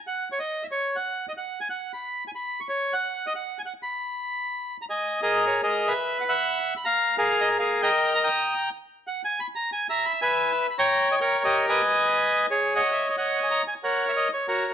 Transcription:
\new Staff \with { instrumentName = "Bandoneon" } { \time 3/4 \key b \major \tempo 4 = 183 << { fis''8. cis''16 dis''8. e''16 cis''8. fis''16~ | fis''8. dis''16 fis''8. gis''16 fis''8. b''16~ | b''8. gis''16 b''8. cis'''16 cis''8. fis''16~ | fis''8. dis''16 fis''8. gis''16 fis''8 b''8~ |
b''2~ b''8 ais''16 gis''16~ | \key gis \minor gis''8. dis''8. cis''8 dis''8. e''16~ | e''8. fis''16 b''4 r8 b''16 ais''16~ | ais''8. eis''8. dis''8 eis''8. g''16~ |
g''8. ais''16 dis'''4 r4 | r8 fis''8 gis''8 b''8 ais''8 gis''8 | ais''8 b''8 gis''4 r8 b''16 ais''16~ | ais''8. dis''16 g''8. dis''8. gis''8~ |
gis''2 cis''8. fis''16~ | \key cis \dorian fis''16 e''8 dis''16 fis''8. gis''16 ais''8 gis''8 | fis''8. e''16 dis''8 cis''8 cis''8. r16 | } \\ { r2. | r2. | r2. | r2. |
r2 r8. dis''16~ | dis''8. <gis' ais'>4~ <gis' ais'>16 <gis' ais'>8. b'16~ | b'4 <e'' fis''>4. r16 eis''16~ | eis''8. <gis' ais'>4~ <gis' ais'>16 <gis' ais'>8. <ais' dis''>16~ |
<ais' dis''>4 <g'' ais''>4. r8 | r2. | e''4 <b' e''>4. r16 <cis'' g''>16~ | <cis'' g''>4 <ais' cis''>8. <g' ais'>8. <b' dis''>8~ |
<b' dis''>2 gis'8. <cis'' dis''>16~ | <cis'' dis''>4 <cis'' dis''>4. r8 | <ais' cis''>4. r8 <fis' ais'>4 | } >> }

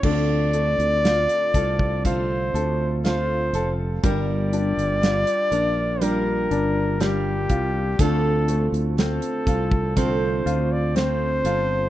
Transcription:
<<
  \new Staff \with { instrumentName = "Flugelhorn" } { \time 4/4 \key d \minor \tempo 4 = 61 d''2 c''4 c''8. r16 | d''2 bes'4 g'4 | a'8. r16 a'4 c''8. d''16 c''4 | }
  \new Staff \with { instrumentName = "Steel-string acoustic guitar" } { \time 4/4 \key d \minor <d a c' f' a'>4 <a c' f' a'>8 <c' f' a'>8 <d a c' f' a'>4 <a c' f' a'>8 <c' f' a'>8 | <g d' f' bes'>4 <g d' f' bes'>8 <d' f' bes'>8 <g d' f' bes'>4 <g d' f' bes'>4 | <d a c' f' a'>4 <a c' f' a'>8 <c' f' a'>8 <d a c' f' a'>4 <a c' f' a'>8 <c' f' a'>8 | }
  \new Staff \with { instrumentName = "Grand piano" } { \time 4/4 \key d \minor d8 a8 f'8 a'8 f'8 a'8 f'8 a'8 | g8 d'8 f'8 d'8 g8 d'8 g8 f'8 | d8 a8 c'8 f'8 c'8 f'8 c'8 f'8 | }
  \new Staff \with { instrumentName = "Fretless electric bass" } { \clef bass \time 4/4 \key d \minor d,8. d,8 r16 c,4 d,4 f,,8 | g,,8. g,,8 r16 bes,,4 g,,4 c,8 | d,8. d,8 r16 c,4 d,4 g,,8 | }
  \new DrumStaff \with { instrumentName = "Drums" } \drummode { \time 4/4 <cymc bd>8 hh16 hh16 <hh sn>16 hh16 <hh bd>16 bd16 <hh bd>8 hh8 <hh sn>8 hh8 | <hh bd>8 hh16 hh16 <hh sn>16 hh16 hh8 hh8 hh8 <hh sn>8 <hh bd>8 | <hh bd>8 hh16 hh16 <hh sn>16 hh16 <hh bd>16 bd16 <hh bd>8 hh8 <hh sn>8 hh8 | }
>>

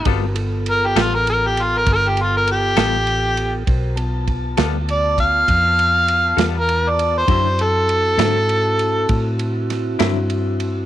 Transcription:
<<
  \new Staff \with { instrumentName = "Harmonica" } { \time 12/8 \key g \mixolydian \tempo 4. = 66 r4 bes'16 g'16 f'16 bes'16 bes'16 g'16 f'16 bes'16 bes'16 g'16 f'16 bes'16 g'2 | r2 d''8 f''2~ f''16 bes'8 d''8 c''16~ | c''8 a'2. r2 r8 | }
  \new Staff \with { instrumentName = "Tonewheel organ" } { \time 12/8 \key g \mixolydian <c' fis' bes'>8 <b f' a'>1~ <b f' a'>4. | <fis' bes' c''>8 <b f' a''>1~ <b f' a''>4. | <c' e' fis'>1. | }
  \new Staff \with { instrumentName = "Clean electric guitar" } { \time 12/8 \key g \mixolydian <g b f' a'>8 r4 <g b f' a'>8 r2 r8 <g b f' a'>8 r4 | r4. <g b f' a'>8 r2 r8 <g b f' a'>8 r4 | <d fis c' e'>8 r4 <d fis c' e'>8 r2 r8 <d fis c' e'>8 r4 | }
  \new Staff \with { instrumentName = "Fingered electric bass" } { \clef bass \time 12/8 \key g \mixolydian g,,4. a,,4. g,,4. a,,4. | b,,4. d,4. f,4. e,4. | fis,4. aes,4. a,4. g,4. | }
  \new DrumStaff \with { instrumentName = "Drums" } \drummode { \time 12/8 <bd cymr>8 cymr8 cymr8 <cymr sn>8 cymr8 cymr8 <bd cymr>8 cymr8 cymr8 <cymr sn>8 cymr8 cymr8 | <bd cymr>8 cymr8 <bd cymr>8 <cymr sn>8 cymr8 <bd cymr>8 <bd cymr>8 cymr8 cymr8 <cymr sn>8 cymr8 cymr8 | <bd cymr>8 cymr8 cymr8 <cymr sn>8 cymr8 cymr8 <bd cymr>8 cymr8 <cymr sn>8 <cymr sn>8 cymr8 cymr8 | }
>>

